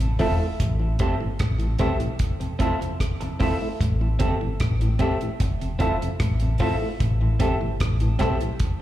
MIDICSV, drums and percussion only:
0, 0, Header, 1, 2, 480
1, 0, Start_track
1, 0, Key_signature, 0, "minor"
1, 0, Tempo, 800854
1, 357, Time_signature, 4, 2, 24, 8
1, 5286, End_track
2, 0, Start_track
2, 0, Title_t, "Drums"
2, 2, Note_on_c, 9, 42, 55
2, 62, Note_off_c, 9, 42, 0
2, 115, Note_on_c, 9, 46, 58
2, 120, Note_on_c, 9, 36, 82
2, 175, Note_off_c, 9, 46, 0
2, 180, Note_off_c, 9, 36, 0
2, 359, Note_on_c, 9, 36, 94
2, 359, Note_on_c, 9, 42, 87
2, 419, Note_off_c, 9, 36, 0
2, 419, Note_off_c, 9, 42, 0
2, 594, Note_on_c, 9, 42, 73
2, 599, Note_on_c, 9, 36, 88
2, 654, Note_off_c, 9, 42, 0
2, 659, Note_off_c, 9, 36, 0
2, 835, Note_on_c, 9, 42, 78
2, 839, Note_on_c, 9, 36, 110
2, 842, Note_on_c, 9, 37, 106
2, 895, Note_off_c, 9, 42, 0
2, 899, Note_off_c, 9, 36, 0
2, 902, Note_off_c, 9, 37, 0
2, 957, Note_on_c, 9, 42, 47
2, 1017, Note_off_c, 9, 42, 0
2, 1070, Note_on_c, 9, 42, 55
2, 1079, Note_on_c, 9, 36, 83
2, 1130, Note_off_c, 9, 42, 0
2, 1139, Note_off_c, 9, 36, 0
2, 1199, Note_on_c, 9, 42, 42
2, 1259, Note_off_c, 9, 42, 0
2, 1314, Note_on_c, 9, 42, 86
2, 1317, Note_on_c, 9, 36, 106
2, 1374, Note_off_c, 9, 42, 0
2, 1377, Note_off_c, 9, 36, 0
2, 1443, Note_on_c, 9, 42, 43
2, 1503, Note_off_c, 9, 42, 0
2, 1557, Note_on_c, 9, 42, 70
2, 1558, Note_on_c, 9, 36, 91
2, 1617, Note_off_c, 9, 42, 0
2, 1618, Note_off_c, 9, 36, 0
2, 1690, Note_on_c, 9, 42, 49
2, 1750, Note_off_c, 9, 42, 0
2, 1799, Note_on_c, 9, 36, 98
2, 1802, Note_on_c, 9, 37, 81
2, 1803, Note_on_c, 9, 42, 89
2, 1859, Note_off_c, 9, 36, 0
2, 1862, Note_off_c, 9, 37, 0
2, 1863, Note_off_c, 9, 42, 0
2, 1923, Note_on_c, 9, 42, 54
2, 1983, Note_off_c, 9, 42, 0
2, 2038, Note_on_c, 9, 46, 62
2, 2041, Note_on_c, 9, 36, 90
2, 2098, Note_off_c, 9, 46, 0
2, 2101, Note_off_c, 9, 36, 0
2, 2281, Note_on_c, 9, 36, 93
2, 2284, Note_on_c, 9, 42, 91
2, 2341, Note_off_c, 9, 36, 0
2, 2343, Note_off_c, 9, 42, 0
2, 2515, Note_on_c, 9, 42, 83
2, 2520, Note_on_c, 9, 36, 88
2, 2575, Note_off_c, 9, 42, 0
2, 2580, Note_off_c, 9, 36, 0
2, 2756, Note_on_c, 9, 42, 82
2, 2760, Note_on_c, 9, 36, 111
2, 2763, Note_on_c, 9, 37, 112
2, 2816, Note_off_c, 9, 42, 0
2, 2820, Note_off_c, 9, 36, 0
2, 2822, Note_off_c, 9, 37, 0
2, 2883, Note_on_c, 9, 42, 48
2, 2943, Note_off_c, 9, 42, 0
2, 2992, Note_on_c, 9, 42, 53
2, 2999, Note_on_c, 9, 36, 85
2, 3052, Note_off_c, 9, 42, 0
2, 3059, Note_off_c, 9, 36, 0
2, 3122, Note_on_c, 9, 42, 39
2, 3182, Note_off_c, 9, 42, 0
2, 3237, Note_on_c, 9, 42, 96
2, 3238, Note_on_c, 9, 36, 116
2, 3297, Note_off_c, 9, 42, 0
2, 3298, Note_off_c, 9, 36, 0
2, 3365, Note_on_c, 9, 42, 44
2, 3425, Note_off_c, 9, 42, 0
2, 3476, Note_on_c, 9, 42, 59
2, 3478, Note_on_c, 9, 36, 88
2, 3536, Note_off_c, 9, 42, 0
2, 3538, Note_off_c, 9, 36, 0
2, 3610, Note_on_c, 9, 42, 50
2, 3669, Note_off_c, 9, 42, 0
2, 3715, Note_on_c, 9, 37, 86
2, 3716, Note_on_c, 9, 42, 84
2, 3717, Note_on_c, 9, 36, 107
2, 3775, Note_off_c, 9, 37, 0
2, 3776, Note_off_c, 9, 42, 0
2, 3777, Note_off_c, 9, 36, 0
2, 3834, Note_on_c, 9, 42, 56
2, 3894, Note_off_c, 9, 42, 0
2, 3944, Note_on_c, 9, 46, 58
2, 3957, Note_on_c, 9, 36, 92
2, 4004, Note_off_c, 9, 46, 0
2, 4016, Note_off_c, 9, 36, 0
2, 4198, Note_on_c, 9, 36, 104
2, 4198, Note_on_c, 9, 42, 81
2, 4258, Note_off_c, 9, 36, 0
2, 4258, Note_off_c, 9, 42, 0
2, 4434, Note_on_c, 9, 42, 81
2, 4438, Note_on_c, 9, 36, 87
2, 4494, Note_off_c, 9, 42, 0
2, 4498, Note_off_c, 9, 36, 0
2, 4676, Note_on_c, 9, 42, 80
2, 4678, Note_on_c, 9, 36, 112
2, 4682, Note_on_c, 9, 37, 123
2, 4736, Note_off_c, 9, 42, 0
2, 4738, Note_off_c, 9, 36, 0
2, 4742, Note_off_c, 9, 37, 0
2, 4796, Note_on_c, 9, 42, 43
2, 4856, Note_off_c, 9, 42, 0
2, 4910, Note_on_c, 9, 42, 59
2, 4918, Note_on_c, 9, 36, 76
2, 4921, Note_on_c, 9, 37, 62
2, 4970, Note_off_c, 9, 42, 0
2, 4977, Note_off_c, 9, 36, 0
2, 4981, Note_off_c, 9, 37, 0
2, 5038, Note_on_c, 9, 42, 43
2, 5098, Note_off_c, 9, 42, 0
2, 5152, Note_on_c, 9, 42, 90
2, 5155, Note_on_c, 9, 36, 106
2, 5211, Note_off_c, 9, 42, 0
2, 5215, Note_off_c, 9, 36, 0
2, 5286, End_track
0, 0, End_of_file